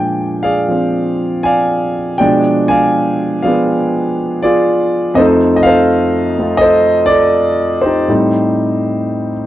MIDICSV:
0, 0, Header, 1, 2, 480
1, 0, Start_track
1, 0, Tempo, 752823
1, 1403, Time_signature, 4, 2, 24, 8
1, 2352, Tempo, 730816
1, 4752, Tempo, 748130
1, 6114, End_track
2, 0, Start_track
2, 0, Title_t, "Grand piano"
2, 0, Program_c, 0, 0
2, 0, Control_c, 0, 64, 127
2, 0, Note_on_c, 0, 46, 47
2, 0, Note_on_c, 0, 53, 39
2, 0, Note_on_c, 0, 56, 44
2, 0, Note_on_c, 0, 62, 52
2, 0, Note_on_c, 0, 74, 52
2, 0, Note_on_c, 0, 77, 49
2, 0, Note_on_c, 0, 79, 72
2, 0, Note_on_c, 0, 80, 72
2, 254, Note_off_c, 0, 77, 0
2, 255, Note_off_c, 0, 74, 0
2, 273, Note_on_c, 0, 77, 75
2, 278, Note_on_c, 0, 74, 56
2, 280, Note_on_c, 0, 68, 58
2, 425, Note_off_c, 0, 53, 0
2, 435, Note_on_c, 0, 53, 39
2, 453, Note_on_c, 0, 60, 45
2, 914, Note_off_c, 0, 80, 0
2, 914, Note_on_c, 0, 80, 83
2, 916, Note_off_c, 0, 74, 0
2, 917, Note_off_c, 0, 77, 0
2, 926, Note_on_c, 0, 74, 65
2, 927, Note_on_c, 0, 77, 70
2, 1223, Note_off_c, 0, 68, 0
2, 1372, Note_off_c, 0, 80, 0
2, 1378, Note_off_c, 0, 74, 0
2, 1378, Note_off_c, 0, 77, 0
2, 1390, Note_off_c, 0, 79, 0
2, 1390, Note_on_c, 0, 79, 92
2, 1392, Note_off_c, 0, 53, 0
2, 1394, Note_off_c, 0, 46, 0
2, 1396, Note_off_c, 0, 56, 0
2, 1399, Note_off_c, 0, 62, 0
2, 1400, Note_on_c, 0, 74, 63
2, 1402, Note_on_c, 0, 53, 47
2, 1403, Note_on_c, 0, 47, 49
2, 1406, Note_on_c, 0, 56, 51
2, 1408, Note_on_c, 0, 62, 61
2, 1410, Note_off_c, 0, 60, 0
2, 1410, Control_c, 0, 64, 0
2, 1524, Control_c, 0, 64, 127
2, 1710, Note_off_c, 0, 74, 0
2, 1711, Note_on_c, 0, 80, 90
2, 1719, Note_on_c, 0, 74, 61
2, 1722, Note_on_c, 0, 77, 62
2, 1725, Note_off_c, 0, 79, 0
2, 2174, Note_off_c, 0, 77, 0
2, 2184, Note_off_c, 0, 53, 0
2, 2184, Note_on_c, 0, 77, 71
2, 2186, Note_off_c, 0, 74, 0
2, 2194, Note_on_c, 0, 53, 45
2, 2195, Note_on_c, 0, 74, 53
2, 2199, Note_on_c, 0, 68, 51
2, 2205, Note_off_c, 0, 80, 0
2, 2209, Note_on_c, 0, 59, 51
2, 2651, Note_off_c, 0, 77, 0
2, 2826, Note_off_c, 0, 74, 0
2, 2834, Note_off_c, 0, 68, 0
2, 2836, Note_on_c, 0, 74, 84
2, 2844, Note_on_c, 0, 68, 57
2, 2849, Note_on_c, 0, 65, 63
2, 3294, Note_off_c, 0, 68, 0
2, 3296, Note_off_c, 0, 65, 0
2, 3306, Note_on_c, 0, 41, 64
2, 3311, Note_off_c, 0, 53, 0
2, 3313, Note_on_c, 0, 75, 91
2, 3319, Note_off_c, 0, 47, 0
2, 3320, Note_off_c, 0, 56, 0
2, 3321, Note_on_c, 0, 53, 48
2, 3322, Note_off_c, 0, 62, 0
2, 3325, Note_off_c, 0, 59, 0
2, 3328, Control_c, 0, 64, 0
2, 3328, Note_on_c, 0, 57, 53
2, 3328, Note_on_c, 0, 72, 66
2, 3331, Note_off_c, 0, 74, 0
2, 3335, Note_on_c, 0, 69, 70
2, 3342, Note_on_c, 0, 63, 63
2, 3373, Note_off_c, 0, 75, 0
2, 3462, Control_c, 0, 64, 127
2, 3583, Note_on_c, 0, 75, 77
2, 3626, Note_on_c, 0, 77, 100
2, 3640, Note_off_c, 0, 72, 0
2, 3641, Note_off_c, 0, 75, 0
2, 3642, Note_off_c, 0, 69, 0
2, 3650, Note_on_c, 0, 72, 70
2, 3652, Note_on_c, 0, 69, 69
2, 4108, Note_off_c, 0, 57, 0
2, 4118, Note_on_c, 0, 57, 46
2, 4128, Note_on_c, 0, 60, 45
2, 4133, Note_on_c, 0, 65, 52
2, 4246, Note_on_c, 0, 75, 107
2, 4262, Note_off_c, 0, 72, 0
2, 4266, Note_off_c, 0, 69, 0
2, 4272, Note_on_c, 0, 72, 68
2, 4276, Note_on_c, 0, 69, 68
2, 4285, Note_off_c, 0, 77, 0
2, 4322, Note_off_c, 0, 75, 0
2, 4565, Note_on_c, 0, 74, 100
2, 4589, Note_off_c, 0, 69, 0
2, 4599, Note_on_c, 0, 69, 57
2, 5032, Note_off_c, 0, 74, 0
2, 5045, Note_off_c, 0, 72, 0
2, 5055, Note_on_c, 0, 72, 65
2, 5072, Note_off_c, 0, 63, 0
2, 5079, Note_on_c, 0, 67, 50
2, 5082, Note_on_c, 0, 63, 50
2, 5205, Note_off_c, 0, 69, 0
2, 5224, Note_off_c, 0, 41, 0
2, 5225, Note_on_c, 0, 45, 50
2, 5226, Note_off_c, 0, 60, 0
2, 5227, Note_off_c, 0, 63, 0
2, 5231, Note_off_c, 0, 53, 0
2, 5233, Note_off_c, 0, 57, 0
2, 5233, Note_on_c, 0, 55, 46
2, 5236, Note_on_c, 0, 60, 44
2, 5237, Control_c, 0, 64, 0
2, 5237, Note_on_c, 0, 63, 53
2, 5240, Note_off_c, 0, 65, 0
2, 5360, Control_c, 0, 64, 127
2, 6002, Note_off_c, 0, 72, 0
2, 6014, Note_off_c, 0, 67, 0
2, 6114, Note_off_c, 0, 45, 0
2, 6114, Note_off_c, 0, 55, 0
2, 6114, Note_off_c, 0, 60, 0
2, 6114, Note_off_c, 0, 63, 0
2, 6114, End_track
0, 0, End_of_file